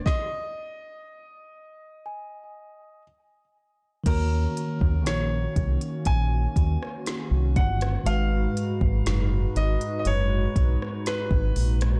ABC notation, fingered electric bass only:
X:1
M:4/4
L:1/16
Q:1/4=60
K:Ebm
V:1 name="Fingered electric bass" clef=bass
z16 | E,,2 z E,, B,,,2 =C,, z B,,,2 E,, z2 C,, =G,,,2 | A,,,2 z A,,, G,,,2 A,,, z G,,,2 C,, z2 A,,, B,,,2 |]